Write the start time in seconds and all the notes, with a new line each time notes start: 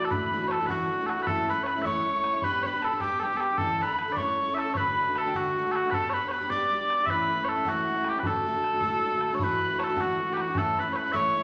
Already playing: E3 A3 D4 F#4
0.02 A4, bodhran
0.10 D2 A2 E3 A3 D4 F#4 B4 B5, bodhran
0.32 E3 A3 D4 F#4, bodhran
0.41 E3 A3 D4 F#4
0.48 A4 C#5 A5, bodhran
0.60 E3 A3 D4 F#4, bodhran
0.66 D2 A2 B4 F#5, bodhran
0.70 E3 A3 D4 F#4
0.90 E3 A3 D4 F#4
0.99 E3 A3 D4 F#4
1.06 F#4 A4 F#5, bodhran
1.17 E3 A3 D4 F#4
1.22 A2 B4
1.26 E3 A3 C#4 E4 A4 A5, bodhran
1.48 E3 A3 C#4 E4 B4 B5, bodhran
1.57 A3 C#4 E4
1.63 B4 C#5 B5, bodhran
1.75 A3 C#4 E4, bodhran
1.82 A2 E3 A3 C#5 E5 C#6, bodhran
1.86 C#4 E4
2.05 E3 A3 C#4 E4
2.15 A3 C#4 E4
2.24 bodhran
2.33 A3 C#4 E4
2.42 G3 B3 D4 G4 B4 B5, bodhran
2.63 G3 B3 D4 B4 C#5 B5, bodhran
2.67 G4
2.73 B3 D4 G4
2.82 A4 A5, bodhran
2.92 B3 D4 G4, bodhran
3.00 G3 B3 D4 G4 G5, bodhran
3.20 G3 G4 A4 G5
3.24 B3 D4 G4
3.33 B3 D4 G4
3.37 G4 A4 G5, bodhran
3.50 B3 D4 G4
3.58 A2 D3 E3 A3 D4 A4 A5, bodhran
3.79 D3 D4 B4 B5, bodhran
3.83 A3 A4
3.89 D3 A3 D4 A4
3.99 bodhran
4.08 D3 A3 D4 A4, bodhran
4.12 D5 C#6
4.17 A2 A3 C#4 E4 A4 C#5, bodhran
4.39 A3 C#4 E4 A4
4.48 C#4 E4 A4
4.54 A4 E5 A5, bodhran
4.65 C#4 E4 A4
4.74 D2 A2 D3 A3 D4 F#4 B4 C#5 B5, bodhran
4.97 D3 A3 D4 F#4, bodhran
5.07 D3 A3 D4 F#4
5.15 A4 A5, bodhran
5.24 D3 A3 D4 F#4 G5, bodhran
5.34 D2 A2 D3 A3 D4 F#4 F#5, bodhran
5.55 D3 A3 D4 F#4
5.65 D3 A3 D4 F#4
5.71 A4 F#5, bodhran
5.76 F#4
5.84 D3 A3 D4 F#4
5.90 G3 B3 D4 A4 B4 A5, bodhran
5.95 G4
6.09 G3 C#5 B5
6.14 B3 D4 G4 B4, bodhran
6.22 B3 D4 G4
6.28 B4 C#5 B5, bodhran
6.41 B3 D4 G4, bodhran
6.50 G3 B3 D4 G4 D5 D6, bodhran
6.72 G3 B3 D4 G4
6.81 B3 D4 G4
6.90 bodhran
6.99 B3 D4 G4
7.06 A2 E3 A3 E5 B5, bodhran
7.10 C#4 E4 B4
7.29 E3 A3 C#4 E4, bodhran
7.37 A3 C#4 E4
7.44 A4 C#5
7.56 A3 C#4 E4, bodhran
7.65 A2 E3 A3 C#4 E4 F#4 F#5, bodhran
7.87 E3 A3 C#4 E4
7.97 A3 C#4 E4
8.04 G5, bodhran
8.09 G4
8.14 A3 C#4 E4
8.19 B4 A5
8.23 D2 A2 D3 A3 D4 F#4 A4, bodhran
8.45 D3 A3 D4 F#4, bodhran
8.54 D3 A3 D4 F#4
8.64 bodhran
8.73 D3 A3 D4 F#4, bodhran
8.81 D2 A2 D3 A3 D4 F#4, bodhran
9.03 D3 A3 D4 F#4
9.13 D3 A3 D4 F#4
9.21 bodhran
9.31 D3 A3 D4 F#4 C#5
9.39 D2 A2 E3 A3 D4 F#4 B5, bodhran
9.44 B4
9.60 E3 A3 D4 F#4, bodhran
9.71 E3 A3 D4 F#4
9.79 C#5 A5, bodhran
9.83 A4
9.88 E3 A3 D4 F#4, bodhran
9.97 D2 A2 E3 A3 D4 F#4 F#5, bodhran
10.20 E3 A3 D4
10.29 E3 A3 D4 F#4 G4
10.36 F#5, bodhran
10.40 F#4
10.48 E3 A3 D4 F#4
10.55 A2 E3 A3 C#4 E4 A4 A5, bodhran
10.77 E3 A3 C#4 E4 B4 B5, bodhran
10.86 A3 C#4 E4
10.93 B4 C#5 B5, bodhran
11.05 A3 C#4 E4
11.12 A2 E3 A3 C#4 E4 C#5 E5 C#6, bodhran
11.34 E3 A3 C#4 E4